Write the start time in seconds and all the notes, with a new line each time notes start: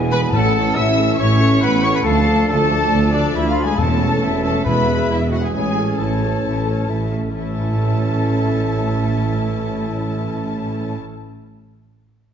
Already playing: E1 E2 E3 G#3 B3 E4 G#5
0.11 B3 G#4 B4 B5
0.32 A1 A2 A3 C#4 E4 A4 F#5 A5
0.55 C#4 A4
0.76 A1 A2 A3 E4 E5 E6
0.98 C#4 A4
1.18 A1 A2 A3 C#4 E4 C#5 E5 C#6
1.39 C#4 A4
1.61 A1 A2 A3 B3 E4 B4 F#5 B5
1.83 C#4 A4 C#5 C#6
1.94 B3 B4 B5
2.04 D2 F3 A3 D4 F4 A4 F5 A5
2.27 D4 A4
2.48 D2 A3 F4 A4 A5
2.70 D4 A4
2.90 D2 A3 F4
3.13 D3 D4 A4 D5
3.34 D2 A3 E4 F4 E5 B5
3.39 E3
3.49 F3 F4 F5
3.56 D4 A4
3.64 G#3 G#4 G#5
3.77 E1 E2 E3 A3 C#4 E4 A4 A5
3.82 A3 A5
4.01 C#4 A4
4.21 E1 E2 A3 E4 E5
4.43 C#4 A4 A5
4.48 A3
4.65 E1 E2 G#3 B3 E4 B4 B5
4.87 G#3 G#4
5.09 E1 E2 E3 B3 E4 E5
5.31 F#3 G#3 F#4 G#4 F#5
5.35 F#5
5.41 G#3 G#4 G#5
5.45 G#5
5.52 A1 A2 G#3 A3 C#4 E4 G#4 C#5 G#5
5.76 C#4 A4
5.98 A1 A2 A3 E4 A4 C#5 A5
6.23 C#4 A4
6.44 A1 A2 A3 E4
6.67 C#4 A4 C#5
6.88 A1 A2 A3 E4 E5
7.11 C#4 A4
7.32 A1 A2 E3 A3 C#4 E4 A4 E5 A5